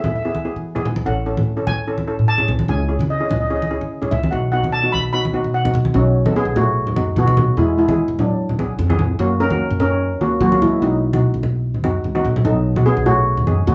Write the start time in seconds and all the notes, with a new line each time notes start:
Already playing: B3 E4 G#4
0.04 E2 E5, high conga, low conga
0.16 E5
0.23 B3 E4 G#4 E5
0.30 E5
0.35 high conga
0.45 B3 E4 G#4
0.56 E3
0.75 B3 E4 G#4, low conga
0.85 E2, low conga
0.96 high conga
1.06 A1 C#4 E4 A4 F#5
1.26 C#4 E4 A4
1.37 A2, high conga
1.57 C#4 E4 A4
1.67 A1 G#5, high conga, low conga
1.87 C#4 E4 A4
1.98 high conga
2.07 C#4 E4 A4
2.19 A2
2.28 A5
2.38 C#4 E4 G#4, low conga
2.48 C2, low conga
2.59 high conga
2.68 C#2 C#4 E4 G#4 G#5
2.88 C#4 E4 G#4
2.99 C#3, high conga
3.10 D#5
3.18 C#4 E4 G#4 D#5
3.25 D#5
3.29 C#2 D#5, high conga, low conga
3.40 D#5
3.47 C#4 E4 G#4 D#5
3.56 D#5
3.62 high conga
3.71 C#4 E4 G#4
3.81 C#3
4.02 C#4 E4 G#4, low conga
4.11 C#2 E5, low conga
4.23 high conga
4.31 B1 B3 D#4 F#4 F#5
4.52 B3 D#4 F#4 F#5
4.63 B2, high conga
4.72 A5
4.84 B3 D#4 F#4
4.92 B1 B5, high conga
5.13 B3 D#4 F#4 B5
5.25 high conga
5.34 B3 D#4 F#4
5.44 B2
5.54 F#5
5.65 B3 D#4 F#4, high conga, low conga
5.74 B1, low conga
5.85 high conga
5.94 B1 F#3 B3 C#4 D#4 F#4
6.25 B2 B3 D#4 A4, high conga
6.36 B3 G#4
6.45 B1
6.56 A3 F#4, low conga
6.87 low conga
6.96 F#2 B3 D#4 F#4, high conga
7.16 B2 B3 F#4, high conga
7.26 B3 D#4 F#4, high conga
7.37 high conga, low conga
7.57 E2 G#3 B3 E4 G#4
7.77 G#3 E4
7.88 E3 B3 E4 G#4, high conga
8.08 E2
8.19 F#3 D4, low conga
8.49 low conga
8.59 B1 B3 E4 G#4, high conga
8.79 F2, high conga
8.89 B3 E4 G#4, high conga
8.99 high conga, low conga
9.19 F#2 A#3 C#4 F#4
9.40 C#4 A#4
9.50 F#3 A#3 C#4 F#4, high conga
9.70 F#2
9.80 C#4 A#4, low conga
10.21 C#2 A#3 C#4 F#4, high conga
10.41 F#3 A#3 F#4, high conga
10.52 A#3 C#4 F#4, high conga
10.62 G#3 E4, high conga, low conga
10.82 B1 F#3 B3 D#4 F#4
11.13 B2 B3 D#4 F#4, high conga
11.34 B1
11.43 low conga
11.74 low conga
11.84 F#2 B3 D#4 F#4, high conga
12.04 C#2, high conga
12.15 B3 D#4 F#4, high conga
12.24 B1, low conga
12.36 low conga
12.45 B1 F#3 B3 D#4 A4
12.76 B2 B3 D#4 F#4, high conga
12.86 B3 G#4
12.97 B1
13.06 A3 F#4, low conga
13.37 low conga
13.46 F#2 B3 D#4 G#4, high conga
13.67 D#2 A3 F#4, high conga